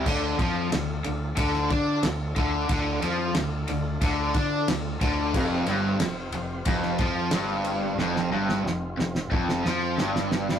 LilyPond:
<<
  \new Staff \with { instrumentName = "Tonewheel organ" } { \time 4/4 \key d \minor \tempo 4 = 91 <d' f' a'>1 | <d' f' a'>1 | <c' f' c''>1 | <c' f'>1 | }
  \new Staff \with { instrumentName = "Overdriven electric guitar" } { \clef bass \time 4/4 \key d \minor d8 f8 d8 d8 d8 d'8 d8 d8 | d8 f8 d8 d8 d8 d'8 d8 d8 | f,8 g,8 f,8 f,8 f,8 f8 g,4 | f,8 g,8 f,8 f,8 f,8 f8 g,4 | }
  \new Staff \with { instrumentName = "Overdriven electric guitar" } { \clef bass \time 4/4 \key d \minor d8 f8 d8 d8 d8 d'8 d8 d8 | d8 f8 d8 d8 d8 d'8 d8 d8 | f,8 g,8 f,8 f,8 f,8 f8 g,4 | f,8 g,8 f,8 f,8 f,8 f8 g,4 | }
  \new Staff \with { instrumentName = "Overdriven electric guitar" } { \clef bass \time 4/4 \key d \minor d8 f8 d8 d8 d8 d'8 d8 d8 | d8 f8 d8 d8 d8 d'8 d8 d8 | f,8 g,8 f,8 f,8 f,8 f8 g,4 | f,8 g,8 f,8 f,8 f,8 f8 g,4 | }
  \new Staff \with { instrumentName = "Fingered electric bass" } { \clef bass \time 4/4 \key d \minor d,8 f,8 d,8 d,8 d,8 d8 d,8 d,8 | d,8 f,8 d,8 d,8 d,8 d8 d,8 d,8 | f,,8 g,,8 f,,8 f,,8 f,,8 f,8 g,,4 | f,,8 g,,8 f,,8 f,,8 f,,8 f,8 g,,4 | }
  \new DrumStaff \with { instrumentName = "Drums" } \drummode { \time 4/4 <cymc bd>8 <bd cymr>8 <cymr sn>8 cymr8 <bd cymr>16 sn16 <bd cymr>8 <cymr sn>8 <bd cymr>8 | <bd cymr>8 cymr8 <cymr sn>8 cymr8 <bd cymr>8 <bd cymr>8 <cymr sn>8 <bd cymr>8 | <cymc bd>8 cymr8 <cymr sn>8 cymr8 <bd cymr>16 sn16 <bd cymr>8 <cymr sn>8 cymr8 | sn16 sn8 sn16 sn8 sn16 sn16 bd16 sn16 sn8 sn16 sn16 sn16 sn16 | }
>>